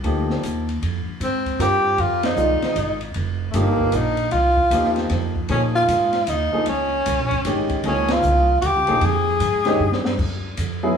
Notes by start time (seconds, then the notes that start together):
0.03 D2 F3 A#3 D#4 G4, ride
0.30 snare
0.43 D#2, hi-hat pedal, ride
0.69 ride
0.82 F2, ride
1.07 muted upright bass stroke
1.20 G#2 C4, hi-hat pedal, ride
1.46 kick, ride
1.59 G2 C4 F4 G4 A#4, hi-hat pedal, ride
1.98 F2 F4, ride
2.23 D#4, snare, ride
2.36 C2 D#3 G#3 F4 D5, hi-hat pedal
2.61 muted upright bass stroke, snare, ride
2.76 G#1, hi-hat pedal, ride
3.01 ride
3.14 F1, ride
3.50 G1 A3 A#3, hi-hat pedal, ride
3.54 F3 A#3 D#4 G4
3.79 kick
3.92 A#1 D#4, hi-hat pedal, ride
4.17 ride
4.31 C2 F4, ride
4.57 kick
4.71 D#2 F3 A#3 D#4 G4, hi-hat pedal, ride
4.84 snare
4.96 snare, ride
5.10 F2, snare, ride
5.35 kick
5.49 A#2 F3 A#3 C#4 D#4 G#4, ride
5.75 F4
5.88 G#2, hi-hat pedal, ride
6.13 snare, ride
6.27 D#2 D#4, hi-hat pedal, ride
6.53 F3 A#3 D#4 G#4, muted upright bass stroke
6.66 C#2 C#4, ride
7.06 C2, hi-hat pedal, ride
7.19 A#1
7.31 G#1, kick, ride
7.45 G#1 D#3 G#3 C#4 G4, hi-hat pedal, ride
7.69 kick, ride
7.84 C#2 F3 A#3 C#4 D#4 G#4, ride
8.08 snare, ride
8.12 F4
8.23 C2, hi-hat pedal
8.61 D#2 F#4, hi-hat pedal, ride
8.67 G4
8.75 C#2
8.87 A#1 F3 A#3 D#4 G#4, ride
9.01 F2, ride
9.05 G#4
9.40 G#2, hi-hat pedal, ride
9.65 D#3 G#3 C#4 G4, snare, ride
9.80 G2
9.92 snare
10.05 snare
10.18 F#2, kick, crash
10.57 F2, hi-hat pedal, ride
10.83 F#3 B3 E4 G#4